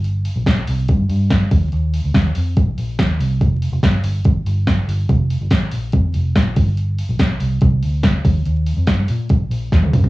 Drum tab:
HH |o-o-o-o-o-o-o-o-|o-o-o-o-o-o-o-o-|o-o-o-o-o-o-o-o-|o-o-o-o-o-o-o-o-|
SD |----o-------o---|----o-------o---|----o-------o---|----o-------o---|
T1 |----------------|----------------|----------------|----------------|
T2 |----------------|----------------|----------------|----------------|
FT |----------------|----------------|----------------|----------------|
BD |----o---o---o-o-|----o---o---o---|o---o---o---o---|o---o---o---o-o-|

HH |o-o-o-o-o-o-o-o-|o-o-o-o-o-o-o-o-|
SD |----o-------o---|----o-------o---|
T1 |----------------|-------------o--|
T2 |----------------|--------------o-|
FT |----------------|---------------o|
BD |----o---o---o-o-|----o---o---o---|